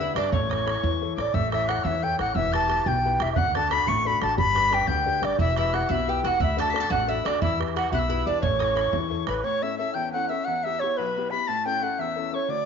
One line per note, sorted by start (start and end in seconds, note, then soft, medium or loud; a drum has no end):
0.00 0.10 D2 medium
0.00 0.15 D3 medium
0.00 0.14 D4 soft
0.00 0.15 E4 medium
0.00 0.15 G4 soft
0.00 0.16 B4 medium
0.00 0.16 E5 medium
0.00 0.13 E6 loud
0.00 bodhran soft
0.15 0.29 G1 medium
0.15 0.29 D4 soft
0.15 0.31 D4 medium
0.15 0.29 G4 soft
0.15 0.30 B4 medium
0.15 0.34 D5 medium
0.15 0.31 D6 medium
0.15 bodhran medium
0.32 0.74 A1 loud
0.32 0.66 A3 medium
0.32 1.14 C#4 medium
0.32 0.90 C#5 medium
0.32 0.51 C#6 medium
0.32 bodhran medium
0.50 0.65 E4 soft
0.50 0.65 A4 soft
0.50 0.65 C#5 medium
0.50 0.68 C#6 medium
0.50 0.55 D#6 medium
0.50 bodhran medium
0.66 0.94 E4 medium
0.66 0.94 A4 soft
0.66 0.94 C#5 medium
0.66 0.72 B5 medium
0.66 bodhran medium
0.71 1.14 C#6 medium
0.76 bodhran soft
0.83 1.12 E2 medium
0.83 1.17 E3 medium
0.83 bodhran medium
1.01 1.17 E4 soft
1.01 1.17 A4 soft
1.01 1.17 C#5 soft
1.01 bodhran soft
1.16 1.31 A1 medium
1.16 1.31 E4 soft
1.16 1.31 A4 soft
1.16 1.31 C#5 soft
1.16 1.36 D5 medium
1.16 1.36 D6 medium
1.16 bodhran medium
1.34 1.76 A1 loud
1.34 1.68 A3 medium
1.34 1.52 E5 medium
1.34 1.50 E6 medium
1.34 bodhran medium
1.51 1.67 E4 soft
1.51 1.68 A4 soft
1.51 1.68 C#5 medium
1.51 1.70 E5 loud
1.51 1.67 E6 medium
1.51 bodhran medium
1.67 1.96 E4 soft
1.67 1.97 A4 soft
1.67 1.97 C#5 medium
1.67 1.88 F#5 medium
1.67 1.85 F#6 medium
1.67 bodhran medium
1.77 bodhran soft
1.84 2.13 E2 loud
1.84 2.18 E3 medium
1.84 2.05 E5 medium
1.84 2.04 E6 medium
1.84 bodhran medium
2.03 2.17 E4 medium
2.03 2.18 A4 soft
2.03 2.18 C#5 medium
2.03 2.19 G5 loud
2.03 2.19 G6 medium
2.03 bodhran soft
2.19 2.33 A1 medium
2.19 2.32 E4 soft
2.19 2.32 A4 soft
2.19 2.32 C#5 soft
2.19 2.35 F#5 medium
2.19 2.37 F#6 medium
2.19 bodhran medium
2.35 2.77 E1 medium
2.35 2.69 E3 medium
2.35 2.53 E5 loud
2.35 2.54 E6 loud
2.35 bodhran medium
2.53 2.67 E4 soft
2.53 2.67 G4 soft
2.53 2.68 B4 medium
2.53 2.80 A5 loud
2.53 2.79 A6 medium
2.53 bodhran medium
2.68 2.96 E4 medium
2.68 2.97 G4 medium
2.68 2.97 B4 medium
2.68 bodhran medium
2.78 2.88 A5 medium
2.78 bodhran soft
2.84 3.14 B1 medium
2.84 3.19 B2 medium
2.84 3.24 G5 loud
2.84 3.13 G6 medium
2.84 2.89 A6 medium
2.84 bodhran medium
3.05 3.19 E4 medium
3.05 3.19 G4 soft
3.05 3.20 B4 medium
3.20 3.34 E1 medium
3.20 3.33 E4 soft
3.20 3.33 G4 soft
3.20 3.34 B4 soft
3.20 3.32 E5 loud
3.20 bodhran medium
3.33 3.70 D3 medium
3.33 3.39 E5 loud
3.33 3.56 F#6 loud
3.33 bodhran loud
3.37 3.79 D2 medium
3.37 3.55 F#5 loud
3.55 3.69 D4 soft
3.55 3.70 F#4 soft
3.55 3.70 A4 medium
3.55 3.74 A5 loud
3.55 3.70 A6 loud
3.55 bodhran medium
3.71 3.98 D4 soft
3.71 3.99 F#4 medium
3.71 3.99 A4 medium
3.71 3.90 B5 loud
3.71 3.89 B6 loud
3.71 bodhran medium
3.79 bodhran soft
3.87 4.16 A1 loud
3.87 4.21 A3 medium
3.87 4.08 C#6 loud
3.87 4.08 C#7 medium
3.87 bodhran medium
4.05 4.20 D4 soft
4.05 4.21 F#4 soft
4.05 4.21 A4 soft
4.05 4.22 B5 loud
4.05 4.25 B6 medium
4.05 bodhran soft
4.22 4.35 A1 medium
4.22 4.35 D4 soft
4.22 4.35 F#4 soft
4.22 4.35 A4 medium
4.22 4.37 A5 loud
4.22 4.38 A6 medium
4.22 bodhran medium
4.38 4.80 G1 loud
4.38 4.71 G3 medium
4.38 4.75 B5 loud
4.38 4.89 B6 loud
4.38 bodhran medium
4.55 4.70 D4 soft
4.55 4.70 G4 soft
4.55 4.71 B4 medium
4.55 bodhran medium
4.71 4.99 D4 medium
4.71 4.99 G4 soft
4.71 5.00 B4 medium
4.71 4.89 G5 loud
4.71 bodhran medium
4.80 bodhran soft
4.87 5.17 D2 medium
4.87 5.21 D3 medium
4.87 5.26 G5 medium
4.87 5.25 G6 medium
4.87 bodhran medium
5.06 5.20 D4 soft
5.06 5.21 G4 medium
5.06 5.21 B4 soft
5.06 bodhran soft
5.22 5.36 G1 medium
5.22 5.35 D4 soft
5.22 5.35 G4 soft
5.22 5.36 B4 soft
5.22 5.40 D5 medium
5.22 5.39 D6 medium
5.22 bodhran medium
5.38 5.81 E1 loud
5.38 5.72 E3 medium
5.38 5.56 E4 medium
5.38 5.57 E5 loud
5.38 5.57 E6 medium
5.38 bodhran medium
5.57 5.72 E4 soft
5.57 5.87 E4 medium
5.57 5.72 G4 soft
5.57 5.73 B4 medium
5.57 5.76 E5 medium
5.57 5.75 E6 medium
5.57 bodhran medium
5.73 6.01 E4 medium
5.73 6.01 G4 soft
5.73 6.02 B4 medium
5.73 5.93 F#5 medium
5.73 5.90 F#6 medium
5.73 bodhran medium
5.82 bodhran soft
5.89 6.18 B1 medium
5.89 6.23 B2 medium
5.89 6.06 E4 medium
5.89 6.11 E5 medium
5.89 5.95 F#6 medium
5.89 bodhran medium
5.94 6.23 E6 medium
6.07 6.22 E4 soft
6.07 6.22 G4 soft
6.07 6.23 G4 medium
6.07 6.23 B4 medium
6.07 6.29 G5 medium
6.07 bodhran soft
6.23 6.37 E1 medium
6.23 6.36 E4 soft
6.23 6.39 F#4 medium
6.23 6.37 G4 soft
6.23 6.37 B4 medium
6.23 6.42 F#5 loud
6.23 6.43 F#6 medium
6.23 bodhran soft
6.40 6.82 D2 loud
6.40 6.74 D3 medium
6.40 6.59 E4 medium
6.40 6.59 E5 loud
6.40 6.61 E6 medium
6.40 bodhran medium
6.57 6.72 D4 soft
6.57 6.73 F#4 medium
6.57 6.73 A4 medium
6.57 6.68 A4 loud
6.57 6.90 A5 loud
6.57 6.71 A6 medium
6.57 bodhran medium
6.70 6.79 A4 medium
6.70 6.82 B6 medium
6.74 7.02 D4 medium
6.74 7.02 F#4 medium
6.74 7.02 A4 medium
6.74 bodhran medium
6.80 6.90 A4 loud
6.80 6.94 A6 medium
6.85 bodhran soft
6.90 7.19 A1 loud
6.90 7.24 A3 medium
6.90 7.07 F#4 medium
6.90 7.11 F#5 medium
6.90 7.11 F#6 medium
6.90 bodhran medium
7.08 7.23 D4 medium
7.08 7.24 E4 medium
7.08 7.24 F#4 soft
7.08 7.24 A4 medium
7.08 7.28 E5 medium
7.08 7.27 E6 medium
7.08 bodhran soft
7.25 7.39 D2 medium
7.25 7.38 D4 soft
7.25 7.40 D4 medium
7.25 7.38 F#4 soft
7.25 7.38 A4 medium
7.25 7.43 D5 medium
7.25 7.42 D6 medium
7.25 bodhran medium
7.42 7.84 E2 medium
7.42 7.75 E3 medium
7.42 7.59 E4 medium
7.42 7.60 E5 loud
7.42 7.59 E6 medium
7.42 bodhran medium
7.59 7.74 E4 soft
7.59 7.74 G4 soft
7.59 7.75 B4 medium
7.59 bodhran medium
7.75 8.03 E4 medium
7.75 7.91 F#4 medium
7.75 8.03 G4 soft
7.75 8.04 B4 medium
7.75 7.91 F#5 loud
7.75 bodhran medium
7.85 bodhran soft
7.91 8.21 B1 medium
7.91 8.25 B2 medium
7.91 8.09 E4 medium
7.91 8.24 E5 medium
7.91 8.00 F#6 medium
7.91 bodhran medium
7.99 8.27 E6 medium
8.09 8.24 E4 medium
8.09 8.25 E4 medium
8.09 8.25 G4 soft
8.09 8.25 B4 medium
8.09 bodhran soft
8.26 8.40 E2 medium
8.26 8.42 D4 medium
8.26 8.39 E4 soft
8.26 8.39 G4 soft
8.26 8.39 B4 medium
8.26 8.41 D5 medium
8.26 8.44 D6 medium
8.42 8.85 A1 loud
8.42 8.76 A3 medium
8.42 9.24 C#4 medium
8.42 8.96 C#5 medium
8.42 8.60 C#6 medium
8.42 bodhran medium
8.59 8.74 E4 medium
8.59 8.75 A4 soft
8.59 8.74 C#5 medium
8.59 8.65 D#6 medium
8.59 bodhran medium
8.64 8.77 C#6 medium
8.75 9.04 E4 soft
8.75 9.04 A4 soft
8.75 9.04 C#5 medium
8.75 8.82 B5 medium
8.75 bodhran medium
8.81 9.27 C#6 medium
8.86 bodhran soft
8.93 9.22 E2 medium
8.93 9.27 E3 medium
8.93 bodhran medium
9.10 9.26 E4 soft
9.10 9.27 A4 soft
9.10 9.27 C#5 medium
9.10 bodhran soft
9.27 9.41 A1 medium
9.27 9.41 E4 soft
9.27 9.41 A4 soft
9.27 9.46 B4 medium
9.27 9.41 C#5 medium
9.27 9.34 B5 medium
9.27 bodhran medium
9.43 9.77 A2 medium
9.43 9.64 C#5 medium
9.43 9.64 C#6 medium
9.62 9.77 C#4 soft
9.62 9.77 E4 soft
9.62 9.78 A4 soft
9.62 9.78 E5 medium
9.62 9.78 E6 medium
9.78 10.06 C#4 soft
9.78 10.06 E4 soft
9.78 10.07 A4 medium
9.78 9.93 E5 medium
9.78 9.96 E6 medium
9.94 10.28 E2 medium
9.94 10.11 G5 loud
9.94 10.12 G6 medium
10.13 10.29 C#4 soft
10.13 10.29 E4 soft
10.13 10.30 A4 soft
10.13 10.28 F#5 loud
10.13 10.31 F#6 medium
10.29 10.43 C#4 soft
10.29 10.43 E4 soft
10.29 10.43 A4 soft
10.29 10.46 E5 medium
10.29 10.46 E6 medium
10.44 10.80 E2 medium
10.44 10.65 F#5 loud
10.44 10.66 F#6 medium
10.63 10.80 B3 soft
10.63 10.81 E4 soft
10.63 10.82 G4 soft
10.63 10.81 E5 loud
10.63 10.83 E6 medium
10.79 11.09 B3 soft
10.79 11.09 E4 soft
10.79 11.10 G4 medium
10.79 10.98 C#5 medium
10.79 10.99 C#6 medium
10.97 11.31 B1 medium
10.97 11.32 B4 medium
10.97 11.30 B5 medium
11.17 11.30 B3 soft
11.17 11.30 E4 soft
11.17 11.31 G4 medium
11.30 11.44 B3 soft
11.30 11.44 E4 soft
11.30 11.45 G4 soft
11.30 11.49 B5 medium
11.30 11.49 B6 medium
11.47 11.81 A2 medium
11.47 11.67 A5 loud
11.47 11.66 A6 medium
11.66 11.80 C#4 soft
11.66 11.80 E4 soft
11.66 11.81 A4 soft
11.66 11.84 G5 loud
11.66 11.85 G6 medium
11.81 12.09 C#4 soft
11.81 12.10 E4 soft
11.81 12.10 A4 medium
11.81 12.01 F#5 medium
11.81 11.98 F#6 medium
11.98 12.32 E2 medium
11.98 12.33 E5 medium
11.98 12.36 E6 medium
11.98 12.02 F#6 medium
12.16 12.32 C#4 soft
12.16 12.31 E4 soft
12.16 12.32 A4 medium
12.33 12.46 C#4 soft
12.33 12.46 E4 soft
12.33 12.46 A4 soft
12.33 12.51 C#5 medium
12.33 12.52 C#6 medium
12.48 12.65 D2 medium
12.48 12.65 D5 medium
12.48 12.65 D6 medium